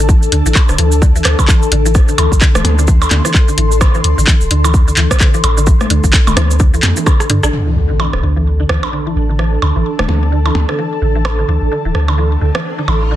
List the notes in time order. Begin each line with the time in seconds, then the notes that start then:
Already playing: A1 D4 A4 A5
0.09 E3, kick, cabasa
0.23 cabasa
0.32 D2 D3, closed hi-hat
0.46 A1 E3, cabasa
0.55 kick, clap, percussion blips, cabasa
0.69 D1 D3, cross-stick, cabasa
0.78 D2 E3, closed hi-hat
0.92 cabasa
1.02 D3, kick, cabasa
1.16 E3, cabasa
1.25 D2, cross-stick, clap, closed hi-hat
1.39 D3, kick, percussion blips, cabasa
1.48 E3, kick, clap, cabasa
1.62 cabasa
1.72 A1 D3, closed hi-hat
1.85 E3 C6, cabasa
1.94 kick, cross-stick, cabasa
2.08 D3, cabasa
2.18 D2 E3, closed hi-hat, percussion blips
2.32 A1, kick, cabasa
2.41 D3, kick, clap, cabasa
2.55 D1 E3, cross-stick, high tom, cabasa
2.65 D2, closed hi-hat, percussion blips
2.79 D3, cabasa
2.88 E3, kick, cabasa
3.02 percussion blips, cabasa
3.11 D2 D3, clap, closed hi-hat, percussion blips
3.25 E3, cross-stick, cabasa
3.34 kick, clap, cabasa
3.48 D3, cabasa
3.58 A1 E3, closed hi-hat
3.72 cabasa
3.81 D3, kick, cross-stick, percussion blips, cabasa
3.94 E3, cabasa
4.04 D2, closed hi-hat
4.18 A1 D3, cabasa
4.27 E3, kick, clap, cabasa
4.41 D1, cabasa
4.51 D2 D3, closed hi-hat
4.64 E3, percussion blips, cabasa
4.74 kick, cabasa
4.88 D3, cabasa
4.97 D2 E3, clap, closed hi-hat
5.11 kick, cross-stick, cabasa
5.20 D3, kick, clap, cabasa
5.34 E3, cabasa
5.44 A1, closed hi-hat, percussion blips
5.57 D3, cabasa
5.67 E3, kick, cabasa
5.80 cross-stick, high tom, cabasa
5.90 D2 D3, closed hi-hat
6.04 A1 E3, kick, cabasa
6.13 kick, clap, cabasa
6.27 D1 D3, high tom, percussion blips, cabasa
6.37 D2 E3, cross-stick, closed hi-hat, percussion blips
6.51 cabasa
6.59 D3, kick, cabasa
6.74 E3, cabasa
6.83 F2, clap, closed hi-hat, percussion blips
6.97 E3, cabasa
7.06 D3, kick, cross-stick, percussion blips, cabasa
7.20 cross-stick, cabasa
7.30 G2 D3, closed hi-hat
7.43 A1 D4, cross-stick, cabasa
7.53 D3 D4, impact
7.67 E3
7.76 D2 A5
7.90 A1 D3
7.99 E3, percussion blips
8.13 D1, cross-stick
8.23 D2 D3
8.32 A4
8.36 E3
8.60 D3
8.69 D2 E3, cross-stick
8.83 percussion blips
8.92 D3
9.06 E3
9.16 A1
9.29 D3
9.39 E3, cross-stick
9.62 D2 D3, percussion blips
9.76 A1 E3
9.99 D1 D3, cross-stick, high tom
10.09 D2 E3, percussion blips
10.32 D3
10.46 E3, percussion blips
10.55 D2, percussion blips
10.69 D3, cross-stick
10.79 E3
11.02 A1 D3
11.15 E3
11.25 cross-stick, percussion blips, riser
11.39 D3
11.48 D2 E3
11.62 A1
11.72 D3
11.85 D1 E3
11.95 D2, cross-stick
12.08 D3, percussion blips
12.18 E3
12.41 D2 D3
12.55 E3, cross-stick
12.78 D3
12.88 A1 E3, percussion blips
13.11 D3